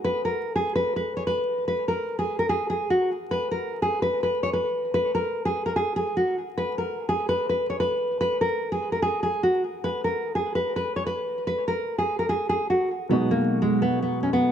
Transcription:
0.04 nylon-string guitar B4
0.25 nylon-string guitar A#4
0.56 nylon-string guitar G#4
0.76 nylon-string guitar B4
0.96 nylon-string guitar B4
1.17 nylon-string guitar C#5
1.27 nylon-string guitar B4
1.68 nylon-string guitar B4
1.88 nylon-string guitar A#4
2.19 nylon-string guitar G#4
2.39 nylon-string guitar A#4
2.49 nylon-string guitar G#4
2.70 nylon-string guitar G#4
2.90 nylon-string guitar F#4
3.31 nylon-string guitar B4
3.51 nylon-string guitar A#4
3.82 nylon-string guitar G#4
4.02 nylon-string guitar B4
4.23 nylon-string guitar B4
4.43 nylon-string guitar C#5
4.53 nylon-string guitar B4
4.94 nylon-string guitar B4
5.15 nylon-string guitar A#4
5.45 nylon-string guitar G#4
5.66 nylon-string guitar A#4
5.76 nylon-string guitar G#4
5.96 nylon-string guitar G#4
6.17 nylon-string guitar F#4
6.57 nylon-string guitar B4
6.78 nylon-string guitar A#4
7.09 nylon-string guitar G#4
7.29 nylon-string guitar B4
7.49 nylon-string guitar B4
7.70 nylon-string guitar C#5
7.80 nylon-string guitar B4
8.21 nylon-string guitar B4
8.41 nylon-string guitar A#4
8.72 nylon-string guitar G#4
8.92 nylon-string guitar A#4
9.02 nylon-string guitar G#4
9.23 nylon-string guitar G#4
9.43 nylon-string guitar F#4
9.84 nylon-string guitar B4
10.04 nylon-string guitar A#4
10.35 nylon-string guitar G#4
10.55 nylon-string guitar B4
10.76 nylon-string guitar B4
10.96 nylon-string guitar C#5
11.07 nylon-string guitar B4
11.47 nylon-string guitar B4
11.68 nylon-string guitar A#4
11.98 nylon-string guitar G#4
12.19 nylon-string guitar A#4
12.29 nylon-string guitar G#4
12.49 nylon-string guitar G#4
12.70 nylon-string guitar F#4
13.09 grand piano B2 F#3 G#3 D#4 F#4, nylon-string guitar B3
13.31 nylon-string guitar A#3
13.62 nylon-string guitar G#3
13.82 nylon-string guitar B3
14.02 nylon-string guitar B3
14.23 nylon-string guitar C#4
14.33 nylon-string guitar B3

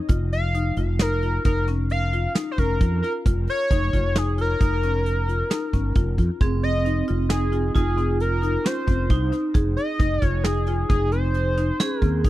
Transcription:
0.09 fretless electric bass F1, marimba F4, kick, closed hi-hat
0.33 analog synth lead F5 C7, closed hi-hat
0.55 marimba D#4, closed hi-hat
0.77 fretless electric bass F1, marimba F4, closed hi-hat
0.99 marimba D#4, analog synth lead A#4 F6, snare, closed hi-hat
1.22 marimba F4, closed hi-hat
1.45 fretless electric bass F1, marimba D#4, analog synth lead A#4 F6, kick, closed hi-hat
1.68 marimba C#4, snare, closed hi-hat
1.90 analog synth lead F5 C7, closed hi-hat
2.13 marimba F4, closed hi-hat
2.35 marimba D#4, snare, closed hi-hat
2.51 analog synth lead C5 G6
2.58 fretless electric bass F1, marimba C#4, analog synth lead A#4 F6, kick, closed hi-hat
2.80 fretless electric bass F2, marimba F4, kick, closed hi-hat
3.02 marimba F4, analog synth lead A#4 F6, snare, closed hi-hat
3.26 fretless electric bass F1, marimba F4, kick, closed hi-hat
3.48 analog synth lead C#5 G#6, closed hi-hat
3.71 fretless electric bass F1, marimba D#4, kick, closed hi-hat
3.93 fretless electric bass F1, marimba F4, kick, closed hi-hat
4.16 marimba D#4, analog synth lead G#4 D#6, snare, closed hi-hat
4.38 marimba F4, analog synth lead A#4 F6, closed hi-hat
4.60 fretless electric bass F1, marimba D#4, kick, closed hi-hat
4.83 marimba C#4, closed hi-hat
5.06 closed hi-hat
5.28 marimba F4, closed hi-hat
5.50 marimba D#4, snare, closed hi-hat
5.73 fretless electric bass G1, marimba C#4, kick, closed hi-hat
5.95 fretless electric bass F1, marimba F4, kick, closed hi-hat
6.18 fretless electric bass F2, marimba F4, kick, closed hi-hat
6.40 fretless electric bass F1, vibraphone C4, marimba G#4, kick, closed hi-hat
6.63 analog synth lead D#5 A#6, closed hi-hat
6.85 marimba D#4, closed hi-hat
7.08 fretless electric bass F1, marimba F4, closed hi-hat
7.29 marimba D#4, analog synth lead G#4 D#6, snare, closed hi-hat
7.52 marimba F4, closed hi-hat
7.75 fretless electric bass F1, marimba D#4, vibraphone F4, analog synth lead G#4 D#6, kick, closed hi-hat
7.97 marimba C4, closed hi-hat
8.20 analog synth lead A#4 F6, closed hi-hat
8.42 marimba D#4, closed hi-hat
8.65 marimba C#4, analog synth lead C5 G6, snare, closed hi-hat
8.87 fretless electric bass F1, marimba C4, kick, closed hi-hat
9.10 fretless electric bass C2, marimba D#4, vibraphone D#4, kick, closed hi-hat
9.32 marimba D#4, snare, closed hi-hat
9.54 fretless electric bass F1, marimba G#4, kick, closed hi-hat
9.77 analog synth lead D#5 A#6, closed hi-hat
9.99 fretless electric bass F1, marimba D#4, kick, snare, closed hi-hat
10.22 fretless electric bass F1, marimba F4, analog synth lead C#5 G#6, kick, snare, closed hi-hat
10.44 marimba D#4, analog synth lead G#4 D#6, snare, closed hi-hat
10.67 marimba F4, snare, closed hi-hat
10.89 fretless electric bass F1, marimba D#4, analog synth lead G#4 D#6, kick, closed hi-hat
11.11 marimba C4, analog synth lead C5 G6, closed hi-hat
11.34 closed hi-hat
11.57 marimba D#4, snare, closed hi-hat
11.80 marimba C#4, vibraphone G#4, snare, closed hi-hat
12.00 fretless electric bass D#2, marimba C4, analog synth lead A#4 F6, kick, closed hi-hat
12.24 fretless electric bass F1, marimba D#4, kick, closed hi-hat

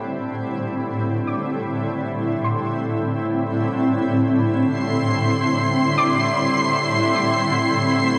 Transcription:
Already playing: ambient pad A2 D3 G3 C4 E4, synth pluck B5
1.27 synth pluck D6
2.44 synth pluck C6
4.75 violin section C6 C7
4.81 ambient pad A2
5.98 synth pluck D6

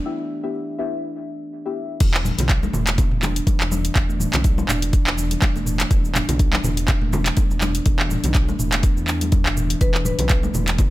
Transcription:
0.05 synth stab B3 E4 G4 E5
0.43 synth stab B3 E4 G4 E5
0.78 synth stab B3 E4 G4 E5
1.65 synth stab B3 E4 G4 E5
2.00 detuned saw bass E1, kalimba E3, kick, closed hi-hat, crash, muted conga, shaker
2.14 kalimba E3, clap, shaker
2.25 kalimba E3, mid tom, high conga, shaker
2.38 detuned saw bass B1, closed hi-hat, muted conga, low conga, shaker
2.49 kick, clap, closed hi-hat, shaker
2.63 kalimba A3, high conga, shaker
2.73 detuned saw bass E1, kalimba E3, mid tom, muted conga, low conga, shaker
2.87 clap, closed hi-hat, shaker
2.98 kalimba B3, kick, closed hi-hat, low conga, shaker
3.11 detuned saw bass E1, mid tom
3.22 kalimba D4, clap, muted conga, high conga, low conga, shaker
3.36 closed hi-hat, shaker
3.47 kalimba E3, kick, closed hi-hat, high conga, shaker
3.60 detuned saw bass E1, kalimba E3, clap, muted conga, shaker
3.72 kalimba E3, high conga, shaker
3.85 closed hi-hat, shaker
3.96 detuned saw bass E1, kick, clap, closed hi-hat, muted conga, shaker
4.09 kalimba A3, shaker
4.20 kalimba E3, mid tom, high conga, shaker
4.33 detuned saw bass B1, clap, closed hi-hat, muted conga, low conga, shaker
4.44 kalimba B3, kick, closed hi-hat, shaker
4.58 high conga, shaker
4.69 detuned saw bass E1, kalimba D4, clap, mid tom, muted conga, shaker
4.82 closed hi-hat, shaker
4.93 kalimba E3, kick, closed hi-hat, shaker
5.07 detuned saw bass E1, kalimba E3, clap, shaker
5.18 kalimba E3, muted conga, shaker
5.31 closed hi-hat, high conga, shaker
5.42 kick, clap, closed hi-hat, high conga, shaker
5.55 detuned saw bass E1, kalimba A3, muted conga, shaker
5.66 kalimba E3, mid tom, shaker
5.80 clap, closed hi-hat, shaker
5.91 detuned saw bass E1, kalimba B3, kick, closed hi-hat, muted conga, shaker
6.05 shaker
6.15 kalimba D4, clap, mid tom, high conga, shaker
6.29 detuned saw bass B1, closed hi-hat, muted conga, low conga, shaker
6.39 kalimba E3, kick, closed hi-hat, shaker
6.53 kalimba E3, clap, high conga, shaker
6.64 detuned saw bass E1, kalimba E3, mid tom, muted conga, low conga, shaker
6.77 closed hi-hat, shaker
6.88 kick, clap, closed hi-hat, low conga, shaker
7.02 detuned saw bass E1, kalimba A3, mid tom
7.13 kalimba E3, muted conga, high conga, low conga, shaker
7.26 clap, closed hi-hat, shaker
7.37 kalimba B3, kick, closed hi-hat, high conga, shaker
7.51 detuned saw bass E1, muted conga, shaker
7.61 kalimba D4, clap, high conga, shaker
7.75 closed hi-hat, shaker
7.86 detuned saw bass E1, kalimba E3, kick, closed hi-hat, muted conga, shaker
7.99 kalimba E3, clap, shaker
8.10 kalimba E3, mid tom, high conga, shaker
8.24 detuned saw bass B1, closed hi-hat, muted conga, low conga, shaker
8.35 kick, clap, closed hi-hat, shaker
8.48 kalimba A3, high conga, shaker
8.59 detuned saw bass E1, kalimba E3, mid tom, muted conga, shaker
8.72 clap, closed hi-hat, shaker
8.83 kalimba B3, kick, closed hi-hat, high conga, shaker
8.97 detuned saw bass E2, shaker
9.08 kalimba D4, clap, muted conga, shaker
9.21 closed hi-hat, high conga, shaker
9.32 kalimba E3, kick, closed hi-hat, high conga, shaker
9.46 detuned saw bass E1, kalimba E3, clap, muted conga, shaker
9.56 kalimba E3, mid tom, shaker
9.70 closed hi-hat, shaker
9.81 detuned saw bass E1, kalimba E3, marimba B4, kick, closed hi-hat, muted conga, shaker
9.94 kalimba E3, clap, shaker
10.05 kalimba E3, marimba B4, mid tom, high conga, shaker
10.19 detuned saw bass B1, marimba B4, closed hi-hat, muted conga, low conga, shaker
10.29 kick, clap, closed hi-hat, shaker
10.43 kalimba A3, high conga, shaker
10.54 detuned saw bass E1, kalimba E3, mid tom, muted conga, low conga, shaker
10.68 clap, closed hi-hat, shaker
10.78 kalimba B3, kick, closed hi-hat, low conga, shaker

